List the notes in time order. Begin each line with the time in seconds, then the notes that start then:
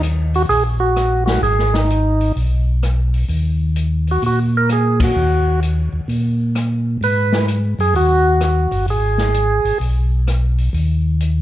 Already playing: D#2
0.03 closed hi-hat
0.34 F#4, open hi-hat
0.49 A#1 G#4, open hi-hat
0.80 F#4
0.96 cross-stick, closed hi-hat
1.26 F#4, snare, open hi-hat
1.42 G#1 G#4, open hi-hat
1.59 snare
1.74 D#4, snare
1.90 closed hi-hat
2.21 open hi-hat
2.36 B1, open hi-hat
2.83 cross-stick, closed hi-hat
3.14 open hi-hat
3.29 D#2, open hi-hat
3.76 closed hi-hat
4.07 open hi-hat
4.11 F#4
4.22 A#2, open hi-hat
4.26 F#4
4.57 A#4
4.69 G#4, cross-stick, closed hi-hat
5.00 F#4, kick, ride
5.16 D#2
5.62 closed hi-hat
5.93 D#2
6.08 A#2, open hi-hat
6.55 cross-stick, closed hi-hat
7.01 G#2 B4, open hi-hat
7.32 snare
7.48 closed hi-hat
7.79 F#2 G#4, open hi-hat
7.94 D#2 F#4, open hi-hat
8.41 F#4, cross-stick, closed hi-hat
8.71 G1, open hi-hat
8.87 G#1 G#4, open hi-hat
9.18 snare
9.34 closed hi-hat
9.65 G#1, open hi-hat
9.80 B1, open hi-hat
10.28 cross-stick, closed hi-hat
10.58 open hi-hat
10.73 D#2, open hi-hat
11.20 closed hi-hat